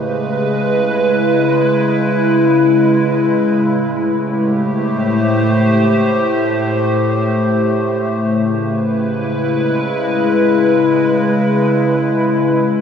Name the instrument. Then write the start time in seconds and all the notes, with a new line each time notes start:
ambient pad
Already playing: C#3 G#3 B4
0.19 E4
3.53 A2
3.66 A3
4.17 G4
4.51 C5
8.16 C#3
8.30 E4
8.37 B4
8.83 G#3
12.72 A2